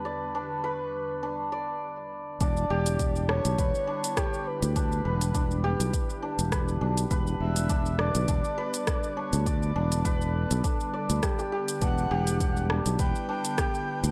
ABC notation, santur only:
X:1
M:4/4
L:1/16
Q:"Swing 16ths" 1/4=102
K:Edor
V:1 name="Santur"
d z D z B z3 D z d z4 z | D z G z3 D z B z D z G z3 | D z B z D z G z3 D z B z D z | B z3 D z d z D z B z3 D z |
d z D z B z3 D z d z G G G z | D z G z3 D z B z D z G z3 |]